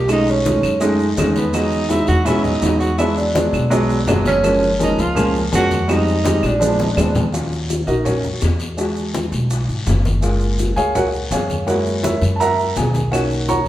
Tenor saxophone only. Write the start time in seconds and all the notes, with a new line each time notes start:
Already playing: G4
0.12 D#4
0.30 C#4
1.37 B3
1.55 D#4
1.90 E4
2.08 F#4
2.25 E4
2.43 D#4
2.80 F#4
2.98 E4
3.17 D4
4.27 C#4
4.83 D#4
5.00 F4
5.55 F#4
5.91 D#4
6.46 D4
6.81 D#4
6.90 D4
7.00 C4
7.09 D4